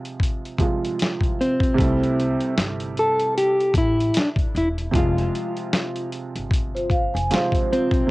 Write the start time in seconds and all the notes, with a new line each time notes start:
Already playing: C3 F3 G#3 F4
0.05 closed hi-hat
0.20 kick, closed hi-hat
0.45 closed hi-hat
0.58 C3 F3 G#3 F4, kick, closed hi-hat
0.85 closed hi-hat
0.99 snare, closed hi-hat
1.21 kick, closed hi-hat
1.41 C4, closed hi-hat
1.60 kick, closed hi-hat
1.74 C3 G3
1.78 C2 A3 E4, kick, closed hi-hat
2.03 closed hi-hat
2.20 closed hi-hat
2.41 closed hi-hat
2.58 G1, snare, closed hi-hat
2.80 closed hi-hat
2.97 A4, closed hi-hat
3.19 closed hi-hat
3.38 G4, closed hi-hat
3.60 closed hi-hat
3.74 A1 E4, kick, closed hi-hat
4.00 closed hi-hat
4.14 D4, snare, closed hi-hat
4.36 kick, closed hi-hat
4.55 E1 E4, closed hi-hat
4.78 closed hi-hat
4.91 F1 C3 F3, kick
4.95 G#3 F4, closed hi-hat
5.18 closed hi-hat
5.35 closed hi-hat
5.57 closed hi-hat
5.73 snare, closed hi-hat
5.96 closed hi-hat
6.12 closed hi-hat
6.35 G1, closed hi-hat
6.51 kick, closed hi-hat
6.75 F4 C5, closed hi-hat
6.90 C5 F5, kick, closed hi-hat
7.14 F1 G#5, closed hi-hat
7.30 C3 F3 G#3 C4 C5 F5, snare, closed hi-hat
7.52 F4 C5, kick, closed hi-hat
7.73 C4, closed hi-hat
7.91 B1, kick, closed hi-hat
8.07 C3